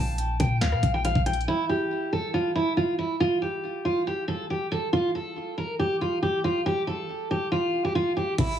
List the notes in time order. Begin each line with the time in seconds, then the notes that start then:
Already playing: A#1 A5
0.18 closed hi-hat
0.40 A#2 G5, kick, closed hi-hat
0.61 D2 F5, snare, clap, closed hi-hat
0.72 A#2, cross-stick
0.83 A#1, kick, closed hi-hat
0.94 G5
1.05 F5, closed hi-hat
1.15 A#1, kick
1.26 G5, closed hi-hat
1.33 closed hi-hat
1.41 closed hi-hat
1.48 E4
1.69 G4
2.13 A4
2.34 F4
2.55 E4
2.77 F4
2.99 E4
3.20 F4
3.42 G4
3.85 F4
4.07 G4
4.28 A4
4.50 G4
4.72 A4
4.93 F4
5.15 A4
5.58 A#4
5.79 G4
6.01 F4
6.23 G4
6.44 F4
6.66 G4
6.87 A4
7.31 G4
7.52 F4
7.84 G4
7.95 F4
8.17 G4
8.38 A1 E4, kick, closed hi-hat, crash